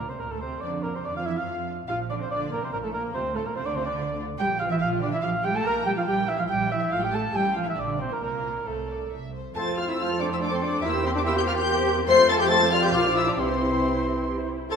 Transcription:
Already playing: D2
0.00 A#4
0.08 C3 C4 C5
0.19 D2 A#2 A#3 D4 A#4
0.30 A2 A3 A4
0.40 C3 C4 D4 C5
0.61 F2 D3 D4 D5
0.83 A#2 A#3 D4 A#4
0.94 C3 C4 C5
1.04 F2 D3 D4 D5
1.15 F3 F4 F5
1.25 E3 D4 E4 E5
1.36 F3 F4 F5
1.47 F2 D4
1.68 D4
1.88 A#1 F3 D4 F4 F5
2.09 D3 D4 D5
2.20 C3 C4 C5
2.30 A#1 D3 D4 D5
2.52 A#2 A#3 D4 A#4
2.62 C3 C4 C5
2.72 A#1 A#2 A#3 D4 A#4
2.83 A2 A3 A4
2.93 A#2 A#3 D4 A#4
3.14 D2 C3 C4 F4 C5
3.35 A2 A3 F4 A4
3.45 A#2 A#3 A#4
3.55 D2 C3 C4 F4 C5
3.66 D3 D4 D5
3.75 C3 C4 F4 C5
3.85 D3 D4 D5
3.98 D2 F4
4.20 F4
4.39 A#1 G3 G4 G5
4.51 F4
4.59 F3 F4 G4 F5
4.70 E3 E4 F4 E5
4.80 A#1 F3 F4 G4 F5
4.91 F4
5.01 D3 D4 G4 D5
5.12 E3 E4 F4 E5
5.21 A#1 F3 F4 G4 F5
5.33 F4
5.43 G3 G4 G5
5.53 A3 F4 A4 A5
5.63 A#1 A#3 G4 A#4 A#5
5.77 E4
5.85 G3 G4 G5
5.96 F3 E4 F4 F5
6.06 A#1 G3 G4 G5
6.19 E4
6.27 E3 E4 G4 E5
6.37 F3 E4 F4 F5
6.48 A#1 G3 G4 G5
6.61 E4
6.69 E3 E4 G4 E5
6.80 E3 E4 E5
6.90 A1 F3 F4 A4 F5
7.00 G3 F4 G4 G5
7.04 G5
7.11 A3 A4 A5
7.23 F4
7.32 A1 G3 G4 A4 G5
7.36 G5
7.46 F4
7.54 F3 F4 A4 F5
7.64 E3 E4 F4 E5
7.69 E5
7.75 A#1 D3 D4 D5
7.89 F4
7.98 C3 C4 D4 C5
8.09 A#2 A#3 F4 A#4
8.19 C2 A#2 A#3 A4 A#4
8.32 F4
8.44 A4
8.55 F4
8.65 C2 A2 A3 A4 C5
8.89 D5
9.12 C2 E5
9.34 C5
9.55 F2 A3 C4 F4 A4 C5 A5 C6 A6
9.67 C4 A4
9.77 A3 F4 C5 F5 F6
9.88 C4 E4 A4 E5 E6
9.98 A3 C4 F4 A4 C5 F5 C6 F6
10.10 C4 A4
10.20 A3 D4 C5 D5 D6
10.30 C4 E4 A4 E5 E6
10.40 A3 D4 A4 C5 D5 D6
10.50 C4 A4 C5 C6
10.54 C4
10.60 A3 D4 C5 D5 D6
10.72 C4 A4
10.81 E2 A#3 E4 G4 A#4 E5 C6 E6
10.85 E4
10.93 C4 C5
11.02 A#3 C4 A#4 C5
11.06 C4 C6
11.13 C4 D4 C5 D5
11.18 D6
11.24 A#3 E4 A#4 E5 C6 E6
11.34 C4 G4 C5 G5
11.38 G6
11.45 A#3 F4 A#4 F5 F6
11.55 C4 G4 C5 G5 G6
11.66 A#3 G4 A#4
11.76 C4 C5
11.87 A#3 A#4
11.97 C4 C5
12.08 F2 A3 F4 A4 C5 C6 C7
12.19 C4 C5
12.28 A3 A4 A5 A6
12.39 C4 G4 C5 G5 G6
12.49 A3 A4 A5 C6 A6
12.61 C4 C5
12.71 G3 A3 F4 A4 F5 F6
12.82 C4 G4 C5 G5 G6
12.92 A#1 F3 F4 A#4 F5 D6 F6
13.05 D4 D5
13.14 E4 F4 A#4 E5 E6
13.25 D4 D5 D6
13.37 C2 E3 C4 E4 G4 C5 C6
13.48 E4 C5
13.60 C4 G4
13.71 E4 C5
13.82 C4 G4
13.93 E4 C5
14.05 C4 G4
14.15 E4 C5
14.26 C4 G4
14.37 E4 C5
14.48 C4 G4
14.59 E4 C5
14.70 F2 F3 C4 F4 A4 A5 C6 A6

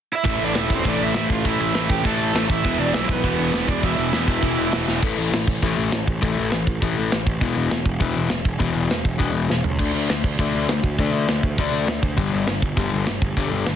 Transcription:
0.13 E4 E5
0.24 A1 A2 E3 A3, kick, open hi-hat
0.41 A1 D4
0.45 D5
0.55 E1 A2 E3 A3 E4, snare, open hi-hat
0.59 E5
0.70 kick
0.74 C4 C5
0.85 A1 A2 E3 A3, kick, open hi-hat
0.89 D4 D5
1.01 A1 E4 E5
1.14 A1 A2 E3 A3, snare
1.30 A1 F4 F5, kick
1.45 A1 A2 E3 A3 E4 E5, kick, open hi-hat
1.60 A1 E4 E5
1.74 A1 A2 E3 A3, snare, open hi-hat
1.90 A1 G4 G5, kick
2.04 A1 A2 E3 A3 A4 A5, kick, open hi-hat
2.34 A1 A2 E3 A3, snare, open hi-hat
2.50 A1 E4 E5, kick
2.64 E1 E2 B2 E3, kick, open hi-hat
2.79 E1 D4 D5
2.93 B1 E2 B2 E3 E4 E5, snare, open hi-hat
3.09 B3 B4, kick
3.24 E1 E2 B2 E3, kick, open hi-hat
3.39 E1
3.53 E1 E2 B2 E3, snare, open hi-hat
3.68 E1 D4 D5, kick
3.83 E1 E2 B2 E3 E4 E5, kick, open hi-hat
3.97 E1
4.13 E1 E2 B2 E3, snare, open hi-hat
4.28 E1, kick
4.42 E1 E2 B2 E3, kick, open hi-hat
4.72 E1 E2 B2 E3, snare, open hi-hat
4.88 E1, snare
5.02 A1 A2 E3 A3, kick, crash
5.18 A1
5.32 A1 A2 E3, snare, open hi-hat
5.47 A1, kick
5.62 A1 A2 E3 A3, kick, open hi-hat
5.77 A1
5.92 A1 A2 E3, snare, open hi-hat
6.07 A1, kick
6.21 A1 A2 E3 A3, kick, open hi-hat
6.38 A1
6.52 A1 A2 E3, snare, open hi-hat
6.67 A1, kick
6.82 A1 A2 E3 A3, kick, open hi-hat
6.99 A1
7.12 A1 A2 E3, snare, open hi-hat
7.27 A1, kick
7.41 E1 E2 B2 E3, kick, open hi-hat
7.56 E1
7.70 E1 E2 B2, snare
7.85 E1, kick
8.00 E1 E2 B2 E3, kick, open hi-hat
8.16 E1
8.29 E1 E2 B2, snare, open hi-hat
8.45 E1, kick
8.59 E1 E2 B2 E3, kick, open hi-hat
8.75 E1
8.90 E1 E2 B2, snare, open hi-hat
9.05 E1, kick
9.18 E1 E2 B2 E3, kick, open hi-hat
9.34 E1
9.48 E1 E2 B2, snare
9.64 C#2, floor tom
9.79 D2 D3 A3 D4, kick, crash
9.93 D2
10.10 D2 D3 A3, snare, open hi-hat
10.24 D2, kick
10.39 D2 D3 A3 D4, kick, open hi-hat
10.54 D2
10.68 D2 D3 A3, snare, open hi-hat
10.83 D2, kick
10.98 D2 D3 A3 D4, kick, open hi-hat
11.13 D2
11.28 D2 D3 A3, snare
11.43 D2, kick
11.58 D2 D3 A3 D4, kick, open hi-hat
11.73 D2
11.87 D2 D3 A3, snare, open hi-hat
12.03 D2, kick
12.17 G1 G2 D3 G3, kick, open hi-hat
12.34 G1
12.47 G1 G2 D3, snare, open hi-hat
12.62 G1, kick
12.77 G1 G2 D3 G3, kick, open hi-hat
12.93 G1
13.07 G1 G2 D3, snare, open hi-hat
13.22 G1, kick
13.37 G1 G2 D3 G3, kick, open hi-hat
13.52 G1
13.66 G1 G2 D3, snare, open hi-hat

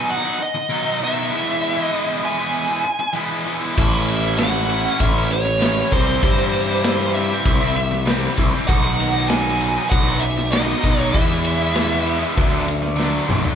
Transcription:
Already playing: D#3 F#3 B3 D#4 G#5
0.11 F#5
0.23 F#3 B3 D#4
0.39 D#5, muted distorted electric guitar stroke
0.55 muted distorted electric guitar stroke
0.69 B2 D#3 F#3 B3 D#4
1.01 D#3 F#3 B3 D#4 E5
1.15 F#3 B3 D#4
1.30 E3 G#3 B3 E4
1.76 G#3 B3 E4
1.86 D#5
1.92 E3 G#3 B3 E4
2.22 E3 G#3 B3 E4 G#5
2.38 G#3 B3 E4
2.68 G#3 B3 E4
2.84 muted distorted electric guitar stroke
2.99 muted distorted electric guitar stroke
3.13 E3 G#3 B3 E4
3.45 E3 G#3 B3 E4
3.60 G#3 B3 E4
3.75 A1 A2 E3 A3 C#4 E4 E5, kick, crash
4.08 ride
4.20 A3 C#4 E4
4.36 A2 E3 A3 C#4 E4 F#5, snare, ride
4.67 E3 A3 C#4 E4, ride
4.82 A3 C#4 E4
5.00 A1 E5, kick, ride
5.12 A3 C#4 E4
5.29 C#5, muted distorted electric guitar stroke, ride
5.45 muted distorted electric guitar stroke
5.59 A2 E3 A3 C#4 E4, snare, ride
5.90 C2 C3 E3 G3 C4 E4 C5, kick, ride
6.05 G3 C4 E4
6.20 G2 C3 E3 G3 C4 E4, kick, ride
6.54 snare, ride
6.66 G3 C4 E4
6.82 C3 E3 G3 C4 E4, snare, ride
7.14 E3 G3 C4 E4 E5, ride
7.30 G3 C4 E4
7.45 C2, kick, ride
7.60 G3 C4 E4
7.75 muted distorted electric guitar stroke, ride
7.91 muted distorted electric guitar stroke, snare
8.05 C3 E3 G3 C4 E4, snare, ride
8.36 C2 E3 G3 C4 E4, kick, ride
8.52 G3 C4 E4
8.67 B1 B2 D#3 F#3 B3 D#4 F#5, kick, ride
9.00 snare, ride
9.14 F#3 B3 D#4
9.29 B2 D#3 F#3 B3 D#4 G#5, snare, ride
9.60 D#3 F#3 B3 D#4, ride
9.75 F#3 B3 D#4
9.90 B1 F#5, kick, ride
10.06 F#3 B3 D#4
10.20 E5, muted distorted electric guitar stroke, ride
10.37 muted distorted electric guitar stroke, snare
10.51 B2 D#3 F#3 B3 D#4 D#5, snare, ride
10.82 B1 D#3 F#3 B3 D#4, kick, ride
10.98 F#3 B3 D#4
11.11 E2 E3 G#3 B3 E4 E5, kick, ride
11.45 ride
11.59 G#3 B3 E4
11.73 E3 G#3 B3 E4, snare, ride
12.04 E3 G#3 B3 E4, ride
12.19 G#3 B3 E4
12.35 D2 D3 F#3 A3 D4, kick, ride
12.50 F#3 A3 D4
12.66 muted distorted electric guitar stroke, ride
12.82 muted distorted electric guitar stroke, snare
12.96 D3 F#3 A3 D4
13.00 snare
13.27 B1 D3 F#3 A3 D4, mid tom
13.42 F#3 A3 D4, floor tom

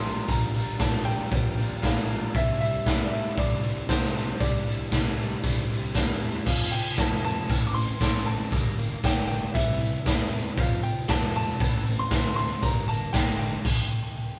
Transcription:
Already playing: A#1 C6
0.01 A#2 F3 G3 A#3 D4 F4 A#4, closed hi-hat
0.27 A#1 A#2 F3 G3 A#3 D4 F4 A#4 A#5, kick, closed hi-hat
0.54 A#1 A#2 F3 G3 A#3 D4 F4 A#4, closed hi-hat
0.79 A#1 A#2 F3 G3 A#3 D4 F4 A#4 A5, kick, snare, closed hi-hat
1.05 A#2 F3 G3 A#3 D4 F4 A#4 G5, closed hi-hat
1.30 A#1 A#2 F3 G3 A#3 D4 F4 A#4, kick, closed hi-hat
1.57 A#2 F3 G3 A#3 D4 F4 A#4, closed hi-hat
1.82 A#1 A#2 F3 G3 A#3 D4 F4 A#4 F5, kick, snare, closed hi-hat
2.08 A#2 F3 G3 A#3 D4 F4 A#4, closed hi-hat
2.34 C2 C3 E3 G3 C4 D4 E4 C5 E5, kick, closed hi-hat
2.59 C3 E3 G3 C4 D4 E4 C5 E5, closed hi-hat
2.85 C2 C3 E3 G3 C4 D4 E4 C5, kick, snare, closed hi-hat
3.04 D5
3.11 C3 E3 G3 C4 D4 E4 C5 E5, closed hi-hat
3.36 C2 C3 E3 G3 C4 D4 E4 C5 D5, kick, closed hi-hat
3.62 C3 E3 G3 C4 D4 E4 C5, closed hi-hat
3.88 C2 C3 E3 G3 C4 D4 E4 C5, kick, snare, closed hi-hat
4.14 C3 E3 G3 C4 D4 E4 C5, snare, closed hi-hat
4.32 C5
4.39 C2 C3 E3 G3 C4 D4 E4 C5 D5, kick, closed hi-hat
4.65 C2 C3 E3 G3 C4 D4 E4 C5, closed hi-hat
4.91 C2 C3 E3 G3 C4 D4 E4 C5, kick, snare, closed hi-hat
5.18 C3 E3 G3 C4 D4 E4 C5, closed hi-hat
5.43 C2 C3 E3 G3 C4 D4 E4 C5, kick, closed hi-hat
5.69 C2 C3 E3 G3 C4 D4 E4 C5, closed hi-hat
5.95 D2 C3 E3 G3 C4 D4 E4 C5, kick, snare, closed hi-hat
6.20 E2 C3 E3 G3 C4 D4 E4 C5, closed hi-hat
6.46 F2 C3 F3 F5, kick, crash
6.72 F2 C3 F3 G5, closed hi-hat
6.98 F2 C3 A3 A5, kick, snare, closed hi-hat
7.23 F2 C3 C4 A5, closed hi-hat
7.48 A1 A2 E3 A3, kick, closed hi-hat
7.67 D6
7.74 A2 E3 C4 C6, closed hi-hat
7.99 A1 A2 E3 A3, kick, snare, closed hi-hat
8.25 A2 E3 C4 A5, closed hi-hat
8.50 G1 G2 D3 G3 A#3, kick, closed hi-hat
8.77 G2 D3 A#3, closed hi-hat
9.03 G1 G2 D3 A#3 G5, kick, snare, closed hi-hat
9.27 G2 D3 D4 G5, closed hi-hat
9.54 C2 C3 E3 G3 E5, kick, closed hi-hat
9.81 C3 E3 E4, closed hi-hat
10.05 E2 C3 E3 G3 C4, kick, snare, closed hi-hat
10.32 C3 E3 E4, closed hi-hat
10.57 F2 C3 F3 F5, kick, closed hi-hat
10.83 F2 C3 F3 G5, closed hi-hat
11.08 F2 C3 A3 A5, kick, snare, closed hi-hat
11.34 F2 C3 C4 A5, closed hi-hat
11.60 A1 A2 E3 A3, kick, closed hi-hat
11.86 A2 E3 C4, closed hi-hat
11.99 C6
12.11 D2 A2 E3 A3, kick, snare, closed hi-hat
12.36 A2 E3 C4 C6, closed hi-hat
12.62 G1 G2 D3 G3 A#3 A#5, kick, closed hi-hat
12.88 G2 D3 A#3 A5, closed hi-hat
13.13 G1 G2 D3 A#3 G5, kick, snare, closed hi-hat
13.39 G2 D3 D4 G5, closed hi-hat
13.65 kick, crash

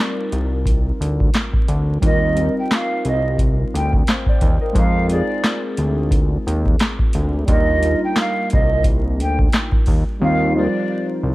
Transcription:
Already playing: G3 C4 D#4 F4 A#4 D5
0.32 C2, closed hi-hat
0.66 kick, closed hi-hat
1.01 D2, closed hi-hat
1.20 kick
1.34 snare, clap, closed hi-hat
1.54 kick
1.68 D2, closed hi-hat
2.00 D#2 G3 C4 D#4, kick, closed hi-hat
2.04 F4 A#4 D#5
2.34 G3 C4 D#4, closed hi-hat
2.39 F4 A#4
2.58 G5
2.71 F5, snare, clap, closed hi-hat
3.05 C2 D#5, closed hi-hat
3.38 kick, closed hi-hat
3.74 D2 G5, closed hi-hat
3.93 kick
4.07 C5 F5, snare, clap, closed hi-hat
4.26 D5 G5, kick
4.41 D#2, kick, closed hi-hat
4.61 A#4 D#5
4.73 F2 G#3 C4 D#4, kick, closed hi-hat
4.77 F4 A#4 F5
5.07 G#3 C4 D#4 D5, closed hi-hat
5.12 F4 G#4
5.44 snare, clap, closed hi-hat
5.77 D2, closed hi-hat
6.11 kick, closed hi-hat
6.47 D#2, closed hi-hat
6.66 kick
6.79 snare, clap, closed hi-hat
6.99 kick
7.13 D2, closed hi-hat
7.45 D#2 G3 D4 D#4, kick, closed hi-hat
7.50 F4 A#4 D#5
7.79 G3 A#3 D#4, closed hi-hat
7.84 F4 A#4
8.04 G5
8.16 F5, snare, clap, closed hi-hat
8.50 C2 D#5, kick, closed hi-hat
8.84 kick, closed hi-hat
9.20 D2 G5, closed hi-hat
9.39 kick
9.53 snare, clap, closed hi-hat
9.72 kick
9.86 D#2, kick, open hi-hat
10.20 D#2 G3 C4 D#4 F5
10.24 F4 A#4
10.52 F3 C4 D#4
10.57 G3 F4 C5 D5
11.23 C2

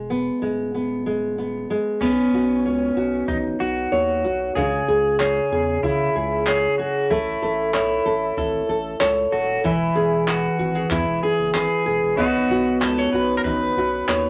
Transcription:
Already playing: E1 G#3
0.10 B3
0.42 D#1 G#3
0.74 B3
1.06 G#3
1.38 B3
1.70 G#3
2.01 B1 B3 C#4, kick, crash
2.33 B1 F#4
2.65 C#2 C#5
2.97 B1 F#4
3.28 A1 D#4, kick
3.60 B1 F#4
3.92 D#2 C#5
4.24 B1 F#4
4.55 C#2 C#3 G#4, kick
4.88 C#2 G#4
5.20 G#4 C#5, clap
5.52 E2 G#4
5.83 C#3 E4, kick
6.16 C#2 G#4
6.47 G#4 C#5, clap
6.78 F#4 G#4
7.10 A1 A3 E4, kick
7.42 A1 A4
7.74 B1 E4 C#5, clap
8.06 A1 A4
8.37 G#1 E4 A4, kick
8.69 A1 A4
9.00 C#2 A4 C#5, clap
9.32 D#1 F#4 A4
9.64 E1 E3 E4, kick
9.95 E1 G#4
10.28 F#4 B4, clap
10.59 G#1 F#4
10.75 G#4
10.91 E2 E4, kick, clap
11.07 E1
11.23 G#4
11.39 F#1
11.54 G#1 G#4 B4, clap
11.86 E1 G#4
12.02 E1
12.16 B1 D#3 B3 C#4 F#4 B4, kick
12.20 D#5
12.50 B1 F#4
12.81 C#2 A4 B4, clap
12.98 C#5
13.13 B1 F#4 B4
13.37 A#4
13.44 A1 D#4 B4, kick
13.77 B1 F#4
14.08 D#2 C#5, clap

